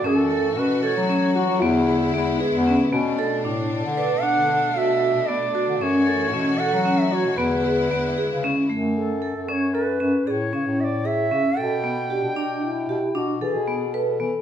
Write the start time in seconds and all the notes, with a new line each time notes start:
Already playing: A3
0.04 F#2 E3 C#4 F#4 A4
0.31 A4
0.57 B2 C#4 B4
0.83 A4 C#5
0.97 F#3
1.09 C#4
1.35 F#4
1.49 F#3
1.61 E2 D3 G#3 B3 E4
1.88 G#4
2.14 E2 B3
2.40 B3 G#4
2.54 E2
2.67 C#4
2.92 B2 A3 B3 C#4 D4
3.18 D4 A4
3.45 A2 D4
3.85 D3
3.97 B4 D5
4.22 D4 F#5
4.36 D3
4.74 B2 F#4 E5 F5
5.16 B2
5.27 B3 D5
5.55 F#4
5.68 D3
5.79 F#2 E3 C#4 F#4 C#5 D5
6.07 A4
6.33 B2 C#4
6.58 A4 F#5
6.73 F#3
6.85 C#4
6.98 E5
7.11 F#4 C#5 D5
7.25 B2
7.37 E2 D3 G#3 B3 E4 B4
7.64 G#4
7.91 E2 B3
8.18 G#4
8.30 C#3
8.44 C#4
8.70 F#2 A3
8.96 A4
9.22 A4
9.35 F#2
9.49 C#4 C#5 D5
9.73 A4 B4
10.00 F#2 C#4
10.27 A2 G#4 C#5 D5
10.53 C#3 C#4
10.67 A2
10.80 D5 E5
11.05 G#4 E5
11.31 C#3 C#4
11.57 B2 A4 G5
11.84 B3
12.10 D4 G4
12.24 B2
12.36 D4
12.62 E4
12.88 B2 G4
13.15 B2 D4 F#4
13.41 E3 G#4 A4
13.55 B2
13.67 B3
13.93 A4 B4
14.20 E3 B3